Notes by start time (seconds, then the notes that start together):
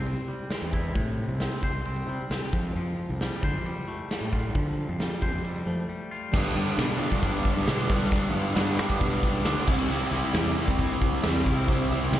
Already playing: C2 C3 C5
0.06 C4, open hi-hat
0.28 G3
0.50 C4, snare, open hi-hat
0.62 E2
0.73 E4, kick
0.95 A2 C3, kick, open hi-hat
1.28 C2
1.40 C4, snare, open hi-hat
1.63 C2 C5, kick
1.74 C2
1.85 C4, open hi-hat
2.07 C3 G3
2.30 C2 C4, snare, open hi-hat
2.53 F2 F3, kick
2.75 F2 F3, open hi-hat
3.09 C2
3.21 G3, snare, open hi-hat
3.43 D3 C5, kick
3.53 F2
3.66 G3, open hi-hat
3.88 A3
4.11 G3, snare, open hi-hat
4.21 A2
4.33 F4, kick
4.55 D3 F3, kick, open hi-hat
4.89 F2
5.00 G3, snare, open hi-hat
5.22 F2 C5, kick
5.33 F2
5.44 G3, open hi-hat
5.67 F3 A3
5.89 G3
6.11 F4
6.33 G2 D3 G3 B3 D4, kick, crash
6.56 G2 G3 B3 D4
6.78 G2 B2 D3 G3 B3 D4, snare, open hi-hat
7.00 G3 B3 D4
7.11 G2, kick
7.23 kick, open hi-hat
7.45 kick
7.57 G2
7.66 B2 D3 G3 B3 D4, snare, open hi-hat
7.88 G3 B3 D4, kick
8.11 G2 D3 G3 B3 D4, kick, open hi-hat
8.33 G2 G3 B3 D4
8.55 G2 D3 G3 B3 D4, snare, open hi-hat
8.78 G3 B3 D4
8.90 kick
9.01 B2, kick, open hi-hat
9.23 kick
9.44 D2 D3 G3 B3 D4, snare, open hi-hat
9.67 C2 C3 G3 C4 E4, kick, crash
9.89 C2 C3 G3 C4 E4
10.11 C2 G3 C4 E4
10.34 E2 C3 G3 C4 E4, snare, open hi-hat
10.56 G3 C4 E4
10.68 C2, kick
10.79 kick, open hi-hat
11.02 kick
11.12 C2
11.23 E2 C3 G3 C4 E4, snare, open hi-hat
11.45 C3 G3 C4 E4, kick
11.67 C3 G3 C4 E4, kick, open hi-hat
11.90 C2 G3 C4 E4
12.12 C2 C3 G3 C4 E4, snare, open hi-hat